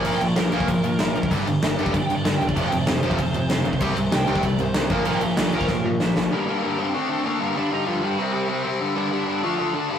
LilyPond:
<<
  \new Staff \with { instrumentName = "Lead electric guitar" } { \time 4/4 \key bes \major \tempo 4 = 192 \tuplet 3/2 { d''8 g''8 d''8 } bes'2. | r2 \tuplet 3/2 { d''8 g''8 d''8 d''8 g''8 d''8 } | \tuplet 3/2 { d''8 g''8 d''8 } c''2. | r4 g''8 g''8 d''8 c''4 r8 |
<bes' g''>8 <d'' f''>8 <f' d''>8 bes'4 r4. | \key g \minor <bes bes'>8 <bes bes'>4 <c' c''>4. <bes bes'>4 | <d' d''>8 <ees' ees''>8 <f f'>8 <g g'>2 r8 | r8 <d' d''>4. <f f'>4 <d' d''>4 | }
  \new Staff \with { instrumentName = "Distorted electric guitar" } { \clef bass \time 4/4 \key bes \major <bes, f bes>8 <bes, f>8 <bes, f>8 <bes, f bes>8 <bes, f>8 <bes, f>8 <bes, f>8 <bes, f>8 | <g, d g>8 <g, d>8 <g, d>8 <g, d g>8 <g, d>8 <g, d>8 <g, d>8 <g, d>8 | <f, c f>8 <f, c>8 <f, c>8 <f, c f>8 <f, c>8 <f, c>8 <f, c>8 <f, c>8 | <c g c'>8 <c g>8 <c g>8 <c g c'>8 <c g>8 <c g>8 <c g>8 <bes, f bes>8 |
<bes, f bes>8 <bes, f>8 <bes, f>8 <bes, f bes>8 <bes, f>8 <bes, f>8 <bes, f>8 <bes, f>8 | \key g \minor <g, d g>8 <g, d g>8 <g, d g>8 <g, d g>8 <d a d'>8 <d a d'>8 <d a d'>8 <g, d g>8 | <g, d g>8 <g, d g>8 <g, d g>8 <g, d g>8 <c g c'>8 <c g c'>8 <c g c'>8 <c g c'>8 | <g, d g>8 <g, d g>8 <g, d g>8 <g, d g>8 <d a d'>8 <d a d'>8 <d a d'>8 <g, d g>8 | }
  \new Staff \with { instrumentName = "Distorted electric guitar" } { \clef bass \time 4/4 \key bes \major <bes, f bes>8 <bes, f>8 <bes, f>8 <bes, f bes>8 <bes, f>8 <bes, f>8 <bes, f>8 <bes, f>8 | <g, d g>8 <g, d>8 <g, d>8 <g, d g>8 <g, d>8 <g, d>8 <g, d>8 <g, d>8 | <f, c f>8 <f, c>8 <f, c>8 <f, c f>8 <f, c>8 <f, c>8 <f, c>8 <f, c>8 | <c g c'>8 <c g>8 <c g>8 <c g c'>8 <c g>8 <c g>8 <c g>8 <bes, f bes>8 |
<bes, f bes>8 <bes, f>8 <bes, f>8 <bes, f bes>8 <bes, f>8 <bes, f>8 <bes, f>8 <bes, f>8 | \key g \minor r1 | r1 | r1 | }
  \new Staff \with { instrumentName = "Picked electric bass" } { \clef bass \time 4/4 \key bes \major bes,,8 bes,,8 bes,,8 bes,,8 bes,,8 bes,8 bes,,8 a,,8 | g,,8 g,,8 g,,8 g,,8 g,,8 g,,8 g,,8 e,,8 | f,,8 f,,8 f,,8 f,,8 f,,8 f,8 f,,8 f,,8 | c,8 c,8 c,8 c,8 c,8 c,8 c,8 bes,,8 |
bes,,8 bes,,8 bes,,8 bes,,8 bes,,8 bes,8 bes,,8 bes,,8 | \key g \minor r1 | r1 | r1 | }
  \new DrumStaff \with { instrumentName = "Drums" } \drummode { \time 4/4 cymc8 cymc8 <cymc sn>8 cymc16 bd16 <cymc bd>8 cymc8 <cymc sn>8 cymc16 bd16 | <cymc bd>8 cymc8 <cymc sn>8 cymc16 bd16 <cymc bd>8 cymc8 <cymc sn>8 cymc16 bd16 | <cymc bd>8 cymc8 <cymc sn>8 cymc16 bd16 <cymc bd>8 cymc8 <cymc sn>8 cymc16 bd16 | <cymc bd>8 cymc8 <cymc sn>8 cymc16 bd16 <cymc bd>8 cymc8 <cymc sn>8 <cymc bd>8 |
cymc8 cymc8 <cymc sn>8 cymc16 bd16 <bd sn>4 sn8 sn8 | r4 r4 r4 r4 | r4 r4 r4 r4 | r4 r4 r4 r4 | }
>>